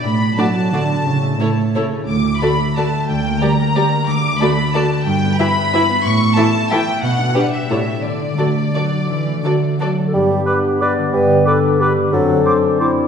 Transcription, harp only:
X:1
M:3/4
L:1/8
Q:1/4=178
K:D
V:1 name="Harp"
[A,,Dd] D d F D A, | A,, A, c A E A, | D, A, d A F A, | D, _B, d _B G B, |
D, A, d A F A, | G,, B, e B E B, | A,, A, e A E A, | B,, D d G A,, [GA] |
D, D A d F D | D, A, A d F D | [K:G] G,, D B G D D, | G,, D B G D D, |
F,, C d D C F, |]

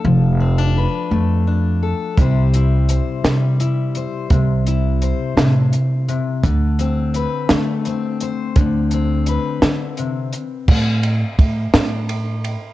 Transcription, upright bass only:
X:1
M:6/8
L:1/8
Q:3/8=56
K:Am
V:1 name="Upright bass" clef=bass
F,,,3 F,,3 | C,,3 C,3 | C,,3 C,3 | D,,3 D,3 |
D,,3 D,3 | A,,2 A,, A,,3 |]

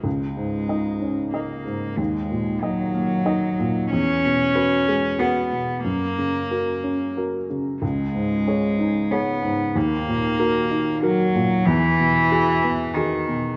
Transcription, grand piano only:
X:1
M:3/4
L:1/8
Q:1/4=93
K:C#dor
V:1 name="Grand piano"
C,, G,, [Dd] C [Dd] G,, | D,, A,, [Dd] A, [Dd] A,, | E,, B,, [FB] G, [FB] B,, | F,, C, [FA] C [FA] C, |
C,, G,, [Gc] D [Gc] G,, | D,, A,, [FA] D [FA] A,, | E,, B,, [FG] B, [FG] B,, |]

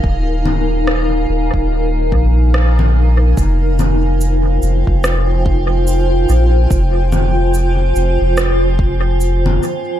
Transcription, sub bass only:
X:1
M:4/4
L:1/16
Q:"Swing 16ths" 1/4=72
K:Fm
V:1 name="Sub bass" clef=bass
E,,,6 E,,, E,,,3 B,,,6 | F,,,6 F,,, F,,,6- F,,, B,,,2 | F,,,6 F,,, F,,,6- F,,, z2 |]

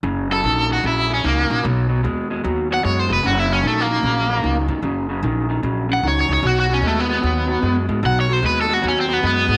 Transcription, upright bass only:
X:1
M:4/4
L:1/8
Q:"Swing" 1/4=150
K:F#
V:1 name="Upright bass" clef=bass
F,,,2 A,,,2 A,,,2 C,, A,,, | B,,,2 D,,2 D,,2 F,, E,,, | F,,,2 A,,,2 A,,,2 C,, D,, | F,,,2 A,,,2 A,,,2 C,, C,, |
B,,,2 D,,2 D,,2 F,, G,, | B,,,2 D,,2 D,,2 F,, G,, |]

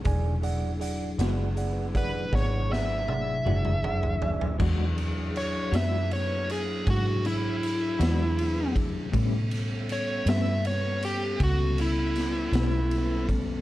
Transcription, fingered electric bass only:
X:1
M:12/8
L:1/8
Q:3/8=53
K:Emix
V:1 name="Fingered electric bass" clef=bass
E,,,3 F,,,3 G,,,3 F,,,3 | E,,3 F,,3 G,,3 E,,3 | A,,3 =G,,3 C,,3 B,,,3 |]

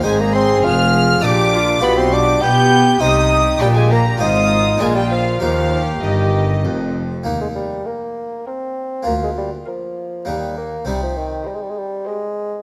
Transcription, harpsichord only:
X:1
M:3/4
L:1/8
Q:1/4=100
K:Eb
V:1 name="Harpsichord"
[A,Ec]4 [A,Dd]2 | [Fd]4 [Ec]2 | [Dd]2 [A,Fc]2 [A,DB]2 | [EB]6 |
[B,E]6 | [B,F]4 [B,E]2 | [CE]6 |]
V:2 name="Harpsichord" clef=bass
A,,2 F,,2 B,,2 | =B,,2 =B,2 C,2 | B,,2 A,,2 B,,2 | E,,2 G,,2 F,,2 |
E,,2 z4 | D,,2 z2 E,,2 | C,2 z4 |]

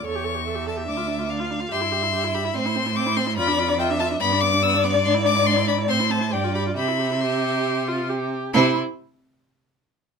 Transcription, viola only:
X:1
M:4/4
L:1/16
Q:1/4=143
K:C
V:1 name="Viola"
A G A G A G A G D F D F D F D F | G E G E G E G E C E C E C E C E | F D F D F D F D B, D B, D B, D B, D | D E D E D E D E C E C E G F G F |
G E G E G6 F2 G4 | E2 z12 z2 |]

